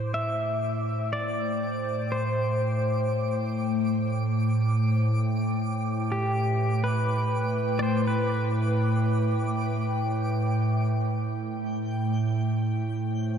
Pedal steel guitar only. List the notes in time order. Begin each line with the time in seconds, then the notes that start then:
Already playing: C5
0.14 E5
1.13 D5
2.12 C5
6.12 G4
6.84 B4
7.79 C5 D5
8.07 B4